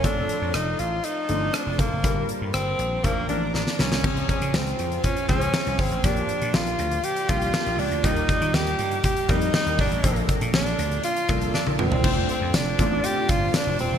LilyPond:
<<
  \new Staff \with { instrumentName = "Ambient pad" } { \time 4/4 \key f \mixolydian \tempo 4 = 120 << { <f' c'' a''>1 | <d'' bes''>1 | <f' f'' aes''>1 | <f' d'' g''>1 |
<g' ees'' bes''>1 | <f' d'' a''>1 | <f' d'' a''>1 | } \\ { a'1 | bes'1 | c''1 | bes1~ |
bes1~ | bes1 | c''1 | } >> }
  \new Staff \with { instrumentName = "Tenor saxophone" } { \time 4/4 \key f \mixolydian d'4 ees'8 f'8 ees'4 d'8 bes8~ | bes8 r8 c'4 bes8 d'8 d'8 des'8~ | des'8 des'8 c'4 des'8 des'4 c'8 | d'4 f'4 g'8 f'4 d'8 |
ees'4 g'4 g'8 ees'8 ees'8 d'8~ | d'8 r8 d'4 f'4 d'8 c'8~ | c'8 c'8 d'4 g'8 f'8 d'8 c'8 | }
  \new Staff \with { instrumentName = "Grand piano" } { \time 4/4 \key f \mixolydian <f a c' a'>4~ <f a c' a'>16 r4 r16 <f a c' d'>4 r8 | <g bes d' bes'>4~ <g bes d' bes'>16 r8. <f bes d' bes'>8 <f bes d' bes'>4 r8 | <f c' des' aes'>4~ <f c' des' aes'>16 r4 r16 <f des' aes' c''>4 r8 | <f bes d' g'>4~ <f bes d' g'>16 r4 r16 <f bes d' g'>4 r8 |
<g bes ees' bes'>4~ <g bes ees' bes'>16 r4 r16 <g bes ees' bes'>4 r8 | <f bes d' a'>4~ <f bes d' a'>16 r4 r16 <f bes d' a'>4 r8 | <a c' d' f' c''>4 r8 <a c' d' f' d''>16 <a c' d' f' d''>4~ <a c' d' f' d''>16 r4 | }
  \new Staff \with { instrumentName = "Slap bass" } { \clef bass \time 4/4 \key f \mixolydian f,,8 r16 f,16 f,,8 a,,8 r8 g,,8 r16 f,,16 f,,16 ges,,16 | g,,8 r16 g,16 g,,8 bes,,8 bes,,8 a,,8 a,,16 r16 c,8 | des,8 r16 des16 des,8 f,8 r8 des,8 r16 c,16 aes,,16 a,,16 | bes,,8 r16 bes,16 bes,,8 d,8 r8 c,8 r16 bes,,16 des,16 d,16 |
ees,8 r16 ees16 ees,8 g,8 r8 f,8 r16 ees,16 aes,,16 a,,16 | bes,,8 r16 bes,16 bes,,8 d,8 r8 c,8 r16 bes,,16 ees,,16 e,,16 | f,,8 r16 f,16 f,,8 a,,8 r8 g,,8 r16 f,,16 ees,,16 e,,16 | }
  \new DrumStaff \with { instrumentName = "Drums" } \drummode { \time 4/4 <hh bd>8 hh8 <hh ss>8 hh8 hh8 hh8 <hh ss>8 <hh bd>8 | <hh bd>8 hh8 <hh ss>8 hh8 <hh bd>8 hh8 sn16 sn16 sn16 sn16 | <cymc bd>16 hh16 <hh bd>16 hh16 sn16 hh16 hh16 hh16 <hh bd>16 hh16 <hh bd>16 hh16 sn16 hh16 <hho bd>16 hh16 | <hh bd>16 hh16 hh16 hh16 sn16 hh16 hh16 hh16 hh16 hh16 <hh bd>16 hh16 sn16 hh16 hho16 hh16 |
<hh bd>16 hh16 <hh bd>16 hh16 sn16 hh16 hh16 hh16 <hh bd>16 hh16 <hh bd>16 hh16 sn16 hh16 <hho bd>16 hh16 | <hh bd>16 hh16 <hh bd>16 hh16 sn16 hh16 hh16 hh16 hh16 hh16 <hh bd>16 hh16 sn16 tommh16 toml16 tomfh16 | <cymc bd>8 hh8 <hh sn tamb>8 <hh bd>8 hh8 <hh bd>8 <hh sn tamb>8 hh8 | }
>>